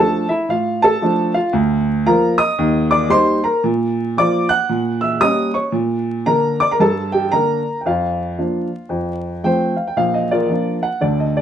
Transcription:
Already playing: F3 A3 D4 A4 A5
0.29 E4 E5
0.49 A2 F4 F5
0.82 A4 A5
1.02 F3 A3 D4
1.34 F4 F5
1.53 D2
2.06 F3 A#3 F4 A#4 A#5
2.38 D#5 D#6
2.58 D#2
2.91 D5 D6
3.10 G3 A#3 D#4 C5 C6
3.44 A#4 A#5
3.64 A#2
4.17 F3 A#3 F4 D5 D6
4.49 F#5 F#6
4.69 A#2
5.01 E5 E6
5.21 G3 A#3 C#4 D#5 D#6
5.54 C#5 C#6
5.72 A#2
6.26 D3 A#3 D4 A#4 A#5
6.60 D5 D6
6.71 A#4 A#5
6.80 G2 A4 A5
7.12 G4 G5
7.32 D3 A#3 D4 A#4 A#5
7.81 G5
7.85 F2 F4 F5
8.38 F3 A#3 D4
8.89 F2
9.44 F3 A3 C4 C5 G5
9.76 F5
9.87 G5
9.97 A#1 A#2 F5
10.14 D#5
10.31 F4 A#4 D5
10.49 F3 A#3 D4
10.83 F#5
11.01 D2 D3 D5
11.20 D#5
11.37 D5

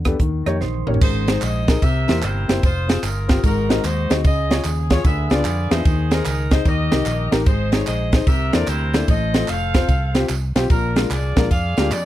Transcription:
Already playing: E2
0.05 B3 D4 G4 A4, kick, cross-stick, closed hi-hat
0.19 D#2 D#3, kick, closed hi-hat
0.46 F2 A#3 D#4 G4 C#5 D#5, cross-stick, closed hi-hat
0.61 A#1 D#4 C5, snare
0.74 high tom
0.87 A1 A#3 C#4 D#4 G4 A#4 C#5, mid tom
0.94 floor tom
1.01 G#1 G#2 D#4 G#4 C5, kick, crash, tambourine
1.27 D#4 G#4 C5, snare, ride, tambourine
1.42 A#1 G#4 C5 D#5, clap, ride, tambourine
1.68 D#4 G#4 A#4, kick, snare, ride, tambourine
1.82 C2 C3 G4 A#4 E5, kick, ride, tambourine
2.08 E2 A#3 C4 E4 G4 C5, snare, ride, tambourine
2.22 G1 E4 G4 C5, clap, ride, tambourine
2.48 F#1 A#3 C4 E4 G4 C5, snare, ride, tambourine
2.63 F1 F4 G#4 C5, kick, ride, tambourine
2.87 C4 F4 G#4, snare, ride, tambourine
3.03 G1 F4 A#4, clap, ride, tambourine
3.28 C4 F4 G4, kick, snare, ride, tambourine
3.43 G#1 G#2 D#4 F#4 A#4, kick, ride, tambourine
3.69 C4 D#4 F#4 G#4 D#5, snare, ride, tambourine
3.84 D#2 D#4 F#4 C5, clap, ride, tambourine
4.09 D2 C4 D#4 F#4 G#4 D#5, snare, ride, tambourine
4.24 C#2 C#3 G#4 D#5, kick, ride, tambourine
4.49 F4 G#4 C#5, snare, ride, tambourine
4.64 D#2, clap, ride, tambourine
4.90 F4 G#4 C#5, kick, snare, ride, tambourine
5.04 D2 D3 G#4 B4 E5, kick, ride, tambourine
5.30 C#2 B3 D4 F4 G#4 B4 D5, snare, ride, tambourine
5.44 F2, clap, ride, tambourine
5.70 E2 B3 D4 D#4 F4 G#4 C5 E5, snare, ride, tambourine
5.85 D#2 D#3, kick, ride, tambourine
6.11 D#4 G#4 A#4 C5, snare, ride, tambourine
6.25 C#2, clap, ride, tambourine
6.51 D#4 G#4 C5 D#5, kick, snare, ride, tambourine
6.65 D#2 D#3 G4 A#4 D#5, kick, ride, tambourine
6.91 C2 D#4 G4 A#4, snare, ride, tambourine
7.06 A#1, clap, ride, tambourine
7.31 A1 D#4 G4 A#4, snare, ride, tambourine
7.46 G#1 G#2 D#4 G#4 C5, kick, ride, tambourine
7.72 D#4 G#4 C5 C#5, snare, ride, tambourine
7.87 A#1 G#4 C5 D#5, clap, ride, tambourine
8.12 D#4 G#4 C5, kick, snare, ride, tambourine
8.27 C2 C3 G4 A#4 E5, kick, ride, tambourine
8.53 E2 A#3 D4 E4 A4 C5 D5, snare, ride, tambourine
8.67 D2 E4 G4 C5, clap, ride, tambourine
8.94 A#3 D4 E4 A4 D5, snare, ride, tambourine
9.08 A1 A2 A4 C5 D#5, kick, ride, tambourine
9.33 C4 F4 A4, snare, ride, tambourine
9.48 F1 A4 C5 F5, clap, ride, tambourine
9.74 C4 F4 C5, kick, snare, ride, tambourine
9.89 C2, kick, ride, tambourine
10.14 C4 F4 G4, snare, ride, tambourine
10.29 C2, clap, ride, tambourine
10.55 B1 C4 F4 G4, snare, ride, tambourine
10.70 A#1 A#2 D4 F4 A#4, kick, ride, tambourine
10.96 G#3 A#3 D4 F4 A#4, snare, ride, tambourine
11.10 C2 F4 G#4 D5, clap, ride, tambourine
11.36 A#1 G#3 A#3 D4 F4 A#4, kick, snare, ride, tambourine
11.51 F2 G#4 D5 F5, kick, ride, tambourine
11.77 D2 G#3 A#3 D4 F4 G4, snare, ride, tambourine
11.91 F2 D5, clap, ride, tambourine

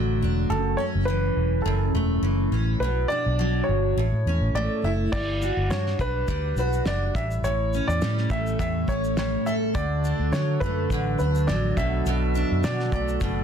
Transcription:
Already playing: A1 D3 F#3 A3 D4 D5
0.22 E1 D4
0.50 F#1 F#2 A4
0.77 C#4 C#5
0.95 F#1
1.05 E3 B4
1.36 E1
1.62 F#1 F#2 A4
1.93 E1 A3
2.22 F#1 E3
2.51 A1 C#4
2.80 B1 B2 B4
3.08 D4 D5
3.26 B1
3.39 F#3
3.64 C#5
3.68 G1
3.97 A1 A2
4.12 A2
4.26 E2 C#4
4.41 A1
4.53 A1 A3 D5
4.83 F#1 E4 E5
5.12 G1 G3 D5, kick, crash
5.42 F#4, shaker
5.57 G1
5.69 G2 D4 C#5, snare, shaker
5.86 snare
5.99 B1 D4 B4, kick, shaker
6.28 D2 G3, kick, shaker
6.56 B1 F#4 B4, shaker
6.73 shaker
6.85 F#1 D4 D5, snare, shaker
7.15 A1 A2 E5, kick, shaker
7.31 shaker
7.42 A1 A2 C#5, shaker
7.73 C#4, shaker
7.88 E2 D5, shaker
8.02 A2 G3, snare, shaker
8.17 snare
8.30 A1 A3 E5, kick, shaker
8.47 shaker
8.59 E2 A2 E5, kick, shaker
8.88 A1 C#4 C#5, kick, shaker
9.04 shaker
9.17 G3 C#5, snare, shaker
9.46 A4 E5, shaker
9.74 D2 D3 A3 F#4 A4 D5, kick, shaker
10.04 D4, shaker
10.19 D2
10.32 D3 F#3 C#5, snare, shaker
10.60 F#2 A3 B4, kick, shaker
10.90 A1 D3, kick, shaker
11.19 D2 D4 B4, shaker
11.35 shaker
11.47 A1 F#3 D5, snare, shaker
11.77 B1 B2 B3 E5, kick, shaker
12.06 B1 B2, shaker
12.35 D4, shaker
12.51 F#2
12.64 F#3 D5, snare, shaker
12.79 snare
12.92 B1 A3 D5, kick, shaker
13.08 shaker
13.21 F#1 B2, kick, shaker

